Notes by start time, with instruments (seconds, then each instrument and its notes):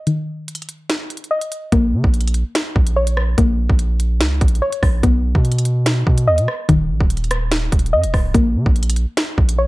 0.07 synth pluck D#3, closed hi-hat
0.48 closed hi-hat
0.55 closed hi-hat
0.62 closed hi-hat
0.69 closed hi-hat
0.90 snare, closed hi-hat
1.10 closed hi-hat
1.17 closed hi-hat
1.24 closed hi-hat
1.31 synth pluck D#5
1.41 closed hi-hat
1.52 closed hi-hat
1.72 808-style bass A#1, synth pluck A#3, kick, closed hi-hat
1.93 808-style bass C#3
2.04 808-style bass A#1, kick
2.14 closed hi-hat
2.21 closed hi-hat
2.28 closed hi-hat
2.34 closed hi-hat
2.55 snare, closed hi-hat
2.76 808-style bass A#1, kick
2.87 closed hi-hat
2.96 synth pluck C#5
3.07 closed hi-hat
3.17 cross-stick
3.38 808-style bass A#1, synth pluck A#3, kick, closed hi-hat
3.70 808-style bass A#1, kick
3.79 closed hi-hat
4.00 closed hi-hat
4.21 808-style bass C#2, snare, closed hi-hat
4.41 808-style bass A#1, kick, closed hi-hat
4.48 closed hi-hat
4.55 closed hi-hat
4.62 synth pluck C#5
4.73 closed hi-hat
4.83 808-style bass A#1, kick, cross-stick, open hi-hat
5.03 808-style bass B1, synth pluck B3, kick, closed hi-hat
5.35 808-style bass B2, kick
5.45 closed hi-hat
5.52 closed hi-hat
5.59 closed hi-hat
5.65 closed hi-hat
5.86 snare, closed hi-hat
6.07 808-style bass B2, kick
6.18 closed hi-hat
6.27 808-style bass D#2, synth pluck D#5
6.38 808-style bass B2, closed hi-hat
6.48 cross-stick
6.69 808-style bass D#1, synth pluck D#3, kick, closed hi-hat
6.89 808-style bass A#1
7.01 808-style bass D#1, kick
7.10 closed hi-hat
7.17 closed hi-hat
7.24 closed hi-hat
7.31 cross-stick, closed hi-hat
7.52 snare, closed hi-hat
7.72 808-style bass D#1, kick, closed hi-hat
7.79 closed hi-hat
7.86 closed hi-hat
7.93 808-style bass F#2, synth pluck D#5
8.04 808-style bass D#1, closed hi-hat
8.14 808-style bass C#1, kick, cross-stick, open hi-hat
8.34 808-style bass A#1, synth pluck A#3, kick, closed hi-hat
8.55 808-style bass C#3
8.66 808-style bass A#1, kick
8.76 closed hi-hat
8.83 closed hi-hat
8.90 closed hi-hat
8.96 closed hi-hat
9.17 snare, closed hi-hat
9.38 808-style bass A#1, kick
9.49 closed hi-hat
9.58 synth pluck C#5